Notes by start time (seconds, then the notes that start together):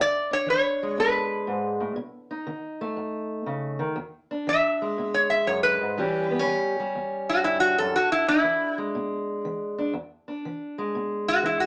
0.00 E2 D5
0.31 D4 C#5
0.46 E3 C#5
0.83 G#3
0.98 B2 B4
1.47 G#2
1.80 A2
1.96 B2
2.31 D#4
2.47 D#3
2.81 A3
2.97 F#2
3.46 C#3
3.79 D#3
3.96 E2
4.31 D4
4.47 E3 E5
4.82 G#3
4.98 B2
5.14 C#5
5.30 E5
5.47 F#2 C#5
5.63 B4
5.81 G#2
5.97 A2 E3 G3 C#4 G4
6.31 B3
6.39 C#4
6.47 E3
6.80 G3
6.95 E2
7.29 F#4
7.44 G2 E4
7.60 F#4
7.78 F#2 A4
7.96 E2 F#4
8.12 E4
8.28 D4 E4
8.43 E3
8.78 G#3
8.95 B2
9.45 E3
9.78 D4
9.93 E2
10.28 D4
10.45 E3
10.78 G#3
10.95 B2
11.28 F#4
11.43 E3 E4
11.60 F#4